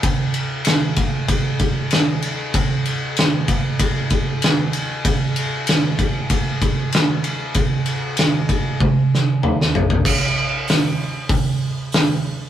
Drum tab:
CC |----------------|----------------|----------------|----------------|
RD |x-x-x-x-x-x-x-x-|x-x-x-x-x-x-x-x-|x-x-x-x-x-x-x-x-|x-x-x-x---------|
HH |----------------|----------------|----------------|----------------|
SD |----o-------o---|----o-------o---|----o-------o---|----o-----o--o--|
T1 |----------------|----------------|----------------|--------o-------|
T2 |----------------|----------------|----------------|------------o---|
FT |----------------|----------------|----------------|--------------oo|
BD |o-----o-o-o-----|o-----o-o-o-----|o-----o-o-o-----|o-----o-o-------|

CC |x---------------|
RD |----------------|
HH |----o---o---o---|
SD |----o-------o---|
T1 |----------------|
T2 |----------------|
FT |----------------|
BD |o-------o-------|